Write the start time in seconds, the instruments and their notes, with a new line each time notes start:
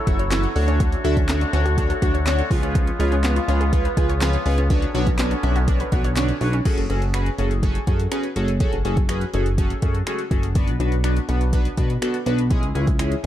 Already playing: woodwind section F#3 E4 A4 C#5
0.07 analog synth bass F#1, analog polysynth E4 F#4 A4 C#5, synth arpeggio sound F#4, kick, closed hi-hat
0.19 synth arpeggio sound C#5, closed hi-hat
0.31 synth arpeggio sound E3, analog polysynth E4 F#4 A4 C#5, snare, clap, closed hi-hat
0.43 closed hi-hat
0.55 analog synth bass D2, woodwind section D3 A3 F#4, analog polysynth D4 F#4 A4 C#5, open hi-hat
0.68 synth arpeggio sound C#4, closed hi-hat
0.80 synth arpeggio sound D3, kick, closed hi-hat
0.92 closed hi-hat
1.04 analog synth bass D2, synth arpeggio sound F#3, analog polysynth D4 F#4 A4 E5, closed hi-hat
1.17 synth arpeggio sound C#4, kick, closed hi-hat
1.29 synth arpeggio sound A3, analog polysynth D4 F#4 A4 C#5, snare, clap, closed hi-hat
1.41 synth arpeggio sound D4, closed hi-hat
1.53 analog synth bass D2, synth arpeggio sound C#4, analog polysynth D4 F#4 A4 C#5, closed hi-hat
1.66 synth arpeggio sound F#4, closed hi-hat
1.78 analog polysynth D4 F#4 A4 C#5, synth arpeggio sound D4, kick, closed hi-hat
1.90 synth arpeggio sound A4, closed hi-hat
2.02 analog synth bass D2, analog polysynth D4 F#4 A4 C#5, synth arpeggio sound F#4, kick, closed hi-hat
2.14 synth arpeggio sound C#5, closed hi-hat
2.26 synth arpeggio sound D3, analog polysynth D4 F#4 A4 C#5, snare, clap, closed hi-hat
2.39 closed hi-hat
2.50 analog synth bass C#2, woodwind section C#3 G#3 B3 F4, analog polysynth F4 G#4 B4 C#5, kick, open hi-hat
2.63 synth arpeggio sound C#4, closed hi-hat
2.75 synth arpeggio sound F3, kick, closed hi-hat
2.87 closed hi-hat
2.99 analog synth bass C#2, synth arpeggio sound G#3, analog polysynth F4 G#4 B4 C#5, closed hi-hat
3.12 synth arpeggio sound C#4, closed hi-hat
3.24 synth arpeggio sound B3, analog polysynth F4 G#4 B4 C#5, snare, clap, closed hi-hat
3.36 synth arpeggio sound F4, closed hi-hat
3.48 analog synth bass C#2, synth arpeggio sound C#4, analog polysynth F4 G#4 B4 C#5, closed hi-hat
3.61 synth arpeggio sound G#4, closed hi-hat
3.72 analog polysynth F4 G#4 B4 C#5, synth arpeggio sound F4, kick, closed hi-hat
3.85 synth arpeggio sound B4, closed hi-hat
3.97 analog synth bass C#2, analog polysynth F4 G#4 B4 C#5, synth arpeggio sound G#4, kick, closed hi-hat
4.09 synth arpeggio sound C#5, closed hi-hat
4.21 synth arpeggio sound F3, analog polysynth F4 G#4 B4 C#5, snare, clap, closed hi-hat
4.33 closed hi-hat
4.46 analog synth bass C#2, analog polysynth F4 G#4 B4 C#5, open hi-hat
4.58 synth arpeggio sound C#4, closed hi-hat
4.70 synth arpeggio sound D3, woodwind section D3 C#4, analog polysynth D4 F#4 B4 C#5, kick, closed hi-hat
4.82 closed hi-hat
4.94 analog synth bass B1, synth arpeggio sound F#3, analog polysynth D4 F#4 B4 C#5, closed hi-hat
5.07 synth arpeggio sound C#4, kick, closed hi-hat
5.19 synth arpeggio sound B3, analog polysynth D4 F#4 B4 C#5, snare, clap, closed hi-hat
5.31 synth arpeggio sound D4, closed hi-hat
5.43 analog synth bass B1, synth arpeggio sound C#4, analog polysynth D4 F#4 B4 E5, closed hi-hat
5.56 synth arpeggio sound F#4, closed hi-hat
5.68 analog polysynth D4 F#4 B4 C#5, synth arpeggio sound D4, kick, closed hi-hat
5.80 synth arpeggio sound B4, closed hi-hat
5.92 analog synth bass B1, analog polysynth D4 F#4 B4 C#5, synth arpeggio sound F#4, kick, closed hi-hat
6.04 synth arpeggio sound C#5, closed hi-hat
6.16 synth arpeggio sound D3, analog polysynth D4 F#4 B4 C#5, snare, clap, closed hi-hat
6.28 closed hi-hat
6.41 analog synth bass B1, analog polysynth D4 F#4 B4 C#5, open hi-hat
6.53 synth arpeggio sound C#4, closed hi-hat
6.65 analog polysynth C#4 F#4 G#4 A4, kick, closed hi-hat, crash
6.78 analog synth bass F#1, closed hi-hat
6.90 analog synth bass F#1, analog polysynth C#4 F#4 G#4 A4, closed hi-hat
7.02 closed hi-hat
7.14 analog polysynth C#4 F#4 G#4 B4, finger snap, closed hi-hat
7.26 closed hi-hat
7.38 analog synth bass F#1, analog polysynth C#4 F#4 G#4 A4, closed hi-hat
7.51 closed hi-hat
7.63 analog polysynth C#4 F#4 G#4 A4, kick, closed hi-hat
7.75 closed hi-hat
7.87 analog synth bass F#2, analog polysynth C#4 F#4 G#4 A4, kick, closed hi-hat
8.00 closed hi-hat
8.11 analog polysynth C#4 F#4 G#4 B4, finger snap, closed hi-hat
8.23 closed hi-hat
8.36 analog synth bass F#1, analog polysynth C#4 F#4 G#4 A4, closed hi-hat
8.48 closed hi-hat
8.60 analog polysynth C#4 F#4 G#4 A4, kick, closed hi-hat
8.73 analog synth bass F#1, closed hi-hat
8.85 analog synth bass F#1, analog polysynth C#4 F#4 G#4 A4, closed hi-hat
8.97 kick, closed hi-hat
9.09 analog polysynth C#4 F#4 G#4 B4, finger snap, closed hi-hat
9.21 closed hi-hat
9.34 analog synth bass F#1, analog polysynth C#4 F#4 G#4 A4, closed hi-hat
9.46 closed hi-hat
9.58 analog polysynth C#4 F#4 G#4 A4, kick, closed hi-hat
9.70 closed hi-hat
9.82 analog synth bass F#2, analog polysynth C#4 F#4 G#4 A4, kick, closed hi-hat
9.95 closed hi-hat
10.07 analog polysynth C#4 F#4 G#4 A4, finger snap, closed hi-hat
10.19 closed hi-hat
10.31 analog synth bass F#1, analog polysynth C#4 F#4 G#4 A4, kick, closed hi-hat
10.43 closed hi-hat
10.55 analog polysynth B3 D4 F#4 B4, kick, closed hi-hat
10.68 analog synth bass B1, closed hi-hat
10.80 analog synth bass B1, analog polysynth B3 D4 F#4 B4, closed hi-hat
10.92 closed hi-hat
11.04 analog polysynth B3 D4 F#4 B4, finger snap, closed hi-hat
11.17 closed hi-hat
11.29 analog synth bass B1, analog polysynth B3 D4 F#4 B4, closed hi-hat
11.41 closed hi-hat
11.53 analog polysynth B3 D4 F#4 B4, kick, closed hi-hat
11.65 closed hi-hat
11.77 analog synth bass B2, analog polysynth B3 D4 F#4 B4, kick, closed hi-hat
11.90 closed hi-hat
12.02 analog polysynth B3 D4 F#4 A4, finger snap, closed hi-hat
12.14 closed hi-hat
12.26 analog synth bass B1, analog polysynth B3 D4 F#4 B4, closed hi-hat
12.39 closed hi-hat
12.50 analog polysynth G#3 C#4 E4 G#4, kick, closed hi-hat
12.63 analog synth bass C#2, closed hi-hat
12.75 analog synth bass C#2, analog polysynth G#3 C#4 E4 G#4, closed hi-hat
12.87 kick, closed hi-hat
12.99 analog polysynth G#3 C#4 E4 G#4, finger snap, closed hi-hat
13.12 closed hi-hat